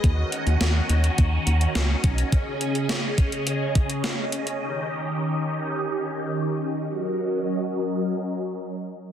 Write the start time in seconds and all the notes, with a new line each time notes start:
Already playing: D#5
0.04 D#2 D#3 C#4 F#4, kick, closed hi-hat
0.32 closed hi-hat
0.47 D#2, closed hi-hat
0.61 D#2, snare, closed hi-hat
0.89 D#2, closed hi-hat
1.04 closed hi-hat
1.18 D#2, kick, closed hi-hat
1.47 D#2, closed hi-hat
1.61 closed hi-hat
1.75 C#2, snare, closed hi-hat
2.04 B1, kick, closed hi-hat
2.18 closed hi-hat
2.32 C#3 G#4 D#5, kick, closed hi-hat
2.61 closed hi-hat
2.75 closed hi-hat
2.89 snare, closed hi-hat
3.18 kick, closed hi-hat
3.32 closed hi-hat
3.47 closed hi-hat
3.75 kick, closed hi-hat
3.90 closed hi-hat
4.04 snare, closed hi-hat
4.32 closed hi-hat
4.47 closed hi-hat
4.61 D#3 G4
6.89 F#3 C#4 A#4 D#5